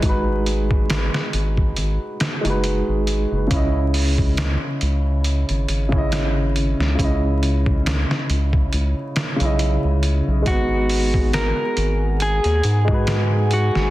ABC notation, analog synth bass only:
X:1
M:4/4
L:1/16
Q:"Swing 16ths" 1/4=69
K:G#m
V:1 name="Analog synth bass" clef=bass
G,,,4- G,,, z G,,,2 G,,, z2 F,,,2 G,,,2 F,,, | C,,4- C,, z C,,3 G,,, G,,,4- G,,, C,, | C,,4- C,, z C,,2 C,, z2 B,,,2 C,,2 B,,, | G,,,4- G,,, z G,,,3 D,, G,,4- G,, G,,, |]